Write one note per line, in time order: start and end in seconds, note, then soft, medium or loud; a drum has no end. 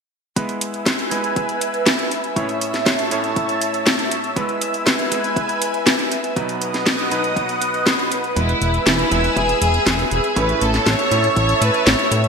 0.36 1.08 G#3 medium
0.36 1.08 B3 medium
0.36 1.08 E4 medium
0.36 1.08 B4 medium
0.36 2.34 B4 medium
0.36 6.32 E5 medium
0.36 2.34 G#5 medium
0.36 6.32 E6 medium
0.36 kick loud
0.36 closed hi-hat medium
0.49 closed hi-hat soft
0.61 closed hi-hat medium
0.74 closed hi-hat soft
0.86 kick medium
0.86 snare loud
0.86 closed hi-hat medium
0.99 closed hi-hat soft
1.11 2.33 G#3 medium
1.11 2.33 B3 medium
1.11 2.33 E4 medium
1.11 2.33 B4 medium
1.11 closed hi-hat medium
1.24 closed hi-hat soft
1.36 kick loud
1.36 closed hi-hat medium
1.49 closed hi-hat soft
1.61 closed hi-hat medium
1.74 closed hi-hat soft
1.86 kick loud
1.86 snare loud
1.86 closed hi-hat medium
1.99 closed hi-hat soft
2.11 closed hi-hat medium
2.24 closed hi-hat soft
2.36 3.08 A2 medium
2.36 3.08 A3 medium
2.36 3.08 C#4 medium
2.36 3.08 E4 medium
2.36 3.08 C#5 medium
2.36 4.35 C#5 medium
2.36 4.35 A5 medium
2.36 kick loud
2.36 closed hi-hat medium
2.49 closed hi-hat soft
2.61 closed hi-hat medium
2.74 snare soft
2.74 closed hi-hat soft
2.86 kick medium
2.86 snare loud
2.86 closed hi-hat medium
2.99 closed hi-hat soft
3.11 4.33 A2 medium
3.11 4.33 A3 medium
3.11 4.33 C#4 medium
3.11 4.33 E4 medium
3.11 4.33 C#5 medium
3.11 closed hi-hat medium
3.24 closed hi-hat soft
3.36 kick loud
3.36 closed hi-hat medium
3.49 closed hi-hat soft
3.62 closed hi-hat medium
3.74 closed hi-hat soft
3.86 kick loud
3.86 snare loud
3.86 closed hi-hat medium
3.99 closed hi-hat soft
4.11 closed hi-hat medium
4.24 closed hi-hat soft
4.36 5.09 G#3 medium
4.36 5.09 B3 medium
4.36 5.09 E4 medium
4.36 6.34 B4 medium
4.36 5.09 B4 medium
4.36 6.34 G#5 medium
4.36 kick loud
4.36 closed hi-hat medium
4.49 closed hi-hat soft
4.61 closed hi-hat medium
4.74 closed hi-hat soft
4.86 kick loud
4.86 snare loud
4.86 closed hi-hat medium
4.99 closed hi-hat soft
5.12 6.34 G#3 medium
5.12 6.34 B3 medium
5.12 6.34 E4 medium
5.12 6.34 B4 medium
5.12 closed hi-hat medium
5.24 closed hi-hat soft
5.36 kick loud
5.36 closed hi-hat medium
5.49 closed hi-hat soft
5.62 closed hi-hat medium
5.74 closed hi-hat soft
5.86 kick loud
5.86 snare loud
5.86 closed hi-hat medium
5.99 closed hi-hat soft
6.12 closed hi-hat medium
6.24 closed hi-hat soft
6.36 7.08 B2 medium
6.36 7.09 F#3 medium
6.36 7.08 B3 medium
6.36 7.08 D#4 medium
6.36 10.32 B4 medium
6.36 7.08 B4 medium
6.36 8.34 D#5 medium
6.36 8.34 F#5 medium
6.36 8.34 D#6 medium
6.36 kick loud
6.36 closed hi-hat medium
6.49 closed hi-hat soft
6.62 closed hi-hat medium
6.74 snare soft
6.74 closed hi-hat soft
6.86 kick loud
6.86 snare loud
6.86 closed hi-hat medium
6.99 closed hi-hat soft
7.11 8.33 B2 medium
7.11 8.34 F#3 medium
7.11 8.33 B3 medium
7.11 8.33 D#4 medium
7.11 8.33 B4 medium
7.11 closed hi-hat medium
7.24 closed hi-hat soft
7.36 kick loud
7.36 closed hi-hat medium
7.49 closed hi-hat soft
7.62 closed hi-hat medium
7.74 closed hi-hat soft
7.86 kick loud
7.86 snare loud
7.86 closed hi-hat medium
7.99 closed hi-hat soft
8.12 closed hi-hat medium
8.24 closed hi-hat soft
8.36 8.54 E1 medium
8.36 9.09 G#3 medium
8.36 9.09 B3 medium
8.36 8.83 E4 medium
8.36 9.09 E4 medium
8.36 9.09 B4 medium
8.36 12.28 E5 medium
8.36 10.35 G#5 medium
8.36 10.35 E6 medium
8.36 kick loud
8.36 closed hi-hat medium
8.49 closed hi-hat soft
8.61 8.79 E1 medium
8.61 closed hi-hat medium
8.74 closed hi-hat soft
8.86 9.04 E1 medium
8.86 9.33 E4 medium
8.86 kick medium
8.86 snare loud
8.86 closed hi-hat medium
8.99 closed hi-hat soft
9.11 9.29 E1 medium
9.11 10.34 G#3 medium
9.11 10.34 B3 medium
9.11 10.34 E4 medium
9.11 10.34 B4 medium
9.11 closed hi-hat medium
9.24 closed hi-hat soft
9.36 9.54 E1 medium
9.36 9.60 G#4 medium
9.36 kick loud
9.36 closed hi-hat medium
9.49 closed hi-hat soft
9.61 9.79 E1 loud
9.61 10.08 G#4 loud
9.61 closed hi-hat medium
9.74 closed hi-hat soft
9.86 10.04 E1 loud
9.86 kick loud
9.86 snare loud
9.86 closed hi-hat medium
9.99 closed hi-hat soft
10.11 10.20 E1 medium
10.11 10.35 G#4 medium
10.11 closed hi-hat medium
10.24 closed hi-hat soft
10.36 10.54 A1 medium
10.36 11.09 A2 medium
10.36 11.09 A3 medium
10.36 11.09 C#4 medium
10.36 11.08 E4 medium
10.36 10.62 B4 medium
10.36 12.28 C#5 medium
10.36 11.09 C#5 medium
10.36 12.28 A5 medium
10.36 12.28 E6 medium
10.36 kick loud
10.36 closed hi-hat medium
10.49 closed hi-hat soft
10.61 10.79 A1 medium
10.61 10.87 A4 medium
10.61 closed hi-hat medium
10.74 snare soft
10.74 closed hi-hat soft
10.86 10.95 A1 medium
10.86 11.35 C#5 loud
10.86 kick medium
10.86 snare loud
10.86 closed hi-hat medium
10.99 closed hi-hat soft
11.11 11.29 A2 medium
11.11 12.28 A2 medium
11.11 12.28 A3 medium
11.11 12.28 C#4 medium
11.11 12.28 E4 medium
11.11 12.28 C#5 medium
11.11 closed hi-hat medium
11.24 closed hi-hat soft
11.36 11.54 A1 medium
11.36 11.60 C#5 loud
11.36 kick loud
11.36 closed hi-hat medium
11.49 closed hi-hat soft
11.61 11.70 A2 medium
11.61 11.87 B4 medium
11.61 closed hi-hat medium
11.74 closed hi-hat soft
11.86 11.95 A1 medium
11.86 12.24 C#5 loud
11.86 kick loud
11.86 snare loud
11.86 closed hi-hat medium
11.99 closed hi-hat soft
12.11 12.28 A2 medium
12.11 closed hi-hat medium
12.24 closed hi-hat soft